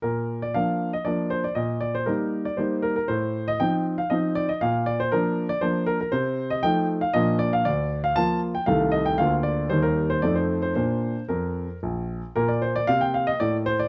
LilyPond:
<<
  \new Staff \with { instrumentName = "Grand piano" } { \time 3/4 \key bes \major \tempo 4 = 118 bes'8. d''16 f''8. ees''16 d''8 c''16 d''16 | ees''8 d''16 c''16 bes'8. d''16 c''8 bes'16 bes'16 | c''8. ees''16 g''8. f''16 ees''8 d''16 ees''16 | f''8 d''16 c''16 bes'8. d''16 c''8 bes'16 bes'16 |
c''8. ees''16 g''8. f''16 ees''8 d''16 f''16 | d''8. f''16 a''8. g''16 f''8 ees''16 g''16 | f''8 d''8 c''16 bes'8 c''16 d''16 c''8 c''16 | c''4 bes'4. r8 |
bes'16 d''16 c''16 d''16 f''16 g''16 f''16 ees''16 d''8 c''16 d''16 | }
  \new Staff \with { instrumentName = "Grand piano" } { \time 3/4 \key bes \major << { r2. | r2. | r2. | r2. |
r2. | r2. | r2. | r2. |
bes2. | } \\ { bes,4 <f bes d'>4 <f bes d'>4 | bes,4 <g bes ees'>4 <g bes ees'>4 | a,4 <f c' ees'>4 <f c' ees'>4 | bes,4 <f bes d'>4 <f bes d'>4 |
c4 <f a ees'>4 <bes, f bes d'>4 | d,4 <f bes f'>4 <c, ees a a'>4 | <d, d bes f'>4 <ees, g bes ees'>4 <f, f a ees'>4 | <bes, bes d'>4 f,4 bes,,4 |
bes,4 c4 a,4 | } >> }
>>